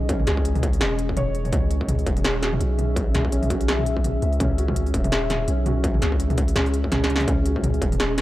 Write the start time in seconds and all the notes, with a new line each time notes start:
Already playing: B1 C#4 G#4 D#5
0.09 C#4, kick, closed hi-hat
0.20 mid tom
0.27 C#2 G#4, snare, closed hi-hat
0.37 kick
0.45 closed hi-hat
0.55 mid tom, open hi-hat
0.63 kick, closed hi-hat
0.73 open hi-hat
0.81 E1, snare, closed hi-hat, mid tom
0.99 closed hi-hat
1.09 kick
1.17 C#5, closed hi-hat, mid tom
1.35 closed hi-hat
1.45 mid tom, open hi-hat
1.53 C#2 E5, kick, closed hi-hat, mid tom
1.71 closed hi-hat
1.81 kick
1.89 closed hi-hat, mid tom
1.99 open hi-hat
2.07 D#1, kick, closed hi-hat
2.17 mid tom, open hi-hat
2.25 C#4, snare, closed hi-hat
2.43 F#4, snare, closed hi-hat
2.53 mid tom
2.61 B1, closed hi-hat
2.79 closed hi-hat, mid tom
2.96 kick, closed hi-hat
3.15 B1, snare, closed hi-hat, mid tom
3.25 kick
3.32 C#4, closed hi-hat
3.43 mid tom, open hi-hat
3.50 F#4, kick, closed hi-hat
3.61 open hi-hat
3.68 snare, closed hi-hat
3.79 mid tom
3.86 closed hi-hat
3.97 kick
4.04 closed hi-hat, mid tom
4.22 C#2, closed hi-hat
4.33 open hi-hat
4.40 C#2 C#4, kick, closed hi-hat, mid tom
4.58 F#4, closed hi-hat
4.68 kick, mid tom
4.76 closed hi-hat
4.86 open hi-hat
4.94 D#1, kick, closed hi-hat
5.04 mid tom, open hi-hat
5.12 snare, closed hi-hat
5.30 snare, closed hi-hat, mid tom
5.48 B1 C#4, closed hi-hat
5.66 F#4, closed hi-hat, mid tom
5.84 kick, closed hi-hat
5.94 mid tom
6.02 C#2, snare, closed hi-hat
6.12 kick
6.20 closed hi-hat
6.30 mid tom, open hi-hat
6.38 kick, closed hi-hat
6.48 open hi-hat
6.56 C#2 C#4, snare, closed hi-hat, mid tom
6.66 open hi-hat
6.74 closed hi-hat
6.84 kick
6.92 C#4, snare, closed hi-hat, mid tom
7.04 snare
7.10 C#3, closed hi-hat
7.16 snare
7.20 mid tom, open hi-hat
7.28 C#2 C#4 D#5, kick, closed hi-hat, mid tom
7.46 F#4, closed hi-hat
7.56 kick
7.64 closed hi-hat, mid tom
7.74 open hi-hat
7.82 D#1, kick, closed hi-hat
7.92 mid tom, open hi-hat
8.00 snare, closed hi-hat
8.18 B3, snare, closed hi-hat